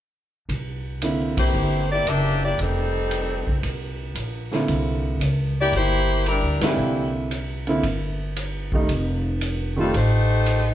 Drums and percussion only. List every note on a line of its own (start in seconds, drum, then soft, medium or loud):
0.49 kick soft
0.49 ride medium
1.02 hi-hat pedal medium
1.02 ride medium
1.37 kick medium
1.37 ride medium
2.07 hi-hat pedal medium
2.07 ride medium
2.59 kick soft
2.59 ride medium
3.11 hi-hat pedal medium
3.11 ride medium
3.47 kick soft
3.63 kick soft
3.63 ride medium
4.15 hi-hat pedal soft
4.15 ride medium
4.51 snare soft
4.68 kick soft
4.68 ride medium
5.21 hi-hat pedal medium
5.21 ride medium
5.73 kick soft
5.73 ride medium
6.26 hi-hat pedal soft
6.26 ride medium
6.61 snare medium
6.61 ride medium
7.31 hi-hat pedal medium
7.31 ride medium
7.67 ride soft
7.83 kick soft
7.83 ride medium
8.36 hi-hat pedal medium
8.36 ride medium
8.72 kick medium
8.89 kick soft
8.89 ride medium
9.41 hi-hat pedal medium
9.41 ride medium
9.94 kick soft
9.94 ride medium
10.46 hi-hat pedal medium
10.46 ride medium